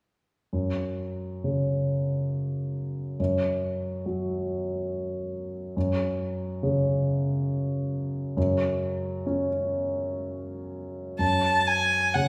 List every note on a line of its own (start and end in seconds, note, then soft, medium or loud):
0.53 3.15 F#2 soft
1.44 3.19 C#3 soft
3.20 5.72 F#2 soft
4.06 5.76 F#3 soft
5.77 8.33 F#2 soft
6.63 9.46 C#3 soft
8.37 11.17 F#2 soft
9.26 11.20 C#4 soft
11.19 12.28 F#2 soft
11.19 11.69 A5 soft
11.67 12.15 G#5 medium
12.14 12.28 C#3 soft
12.14 12.28 F#5 soft